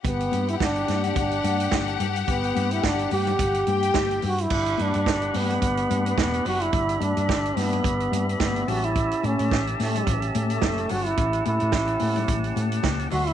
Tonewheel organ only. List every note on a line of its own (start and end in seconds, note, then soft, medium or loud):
4.51 8.64 D4 medium
4.51 8.64 G4 medium
4.51 6.71 F#5 medium
4.51 8.64 B5 medium
6.74 10.86 E5 medium
8.68 13.08 C#4 medium
8.68 13.08 G4 medium
8.68 13.07 A5 medium
10.90 13.09 F#5 medium
13.11 13.33 D4 medium
13.11 13.33 F#4 medium
13.11 13.33 E5 medium
13.11 13.33 C6 medium